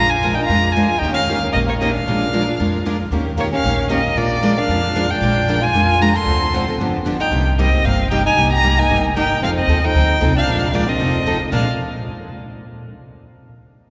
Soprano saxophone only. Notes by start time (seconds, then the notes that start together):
Already playing: F4
0.10 F4
0.34 D#4
0.46 F4
0.73 F4
0.99 D#4
1.13 C#4
1.52 A#3
1.66 A#3
1.77 A#3
1.91 D4
3.38 A#3
3.52 C#4
3.90 A#3
4.15 A#3
4.59 D4
5.10 D4
5.62 F4
6.00 F4
6.14 A4
7.20 D#4
7.59 C4
7.84 C4
8.10 D#4
8.26 D#4
8.52 G4
8.79 D#4
9.16 D#4
9.42 C4
9.58 C4
9.84 D#4
10.36 D4
10.73 A#3
10.88 C4
11.52 D4